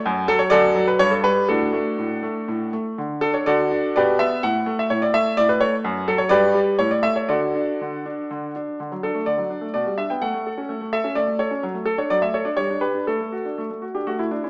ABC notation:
X:1
M:3/4
L:1/16
Q:1/4=125
K:D
V:1 name="Grand piano"
z2 A c [FAd]3 B c A B2 | [DFA]8- [DFA]2 z2 | z2 A c [FAd]4 [GBd]2 e2 | f3 e c d e2 d B c2 |
z2 A c [GBd]4 c d e c | [FAd]8- [FAd]2 z2 | z2 A2 d4 d2 e g | f6 e2 d2 c2 |
z2 A c d e c d c2 B2 | A6- A G F E D E |]
V:2 name="Grand piano"
F,,2 F,2 F,,2 F,2 G,,2 G,2 | A,,2 A,2 A,,2 A,2 A,,2 A,2 | D,2 D2 D,2 D2 B,,2 B,2 | A,,2 A,2 A,,2 A,2 A,,2 A,2 |
F,,2 F,2 G,,2 G,2 A,,2 A,2 | D,2 D2 D,2 D2 D,2 D2 | D, F, D A, D, F, D A, B,, G, D B, | A, A, A C A, A, A C A, A, A C |
F, A, z D F, A, A D G, D G D | A, A, F D A, A, F D A, A, E C |]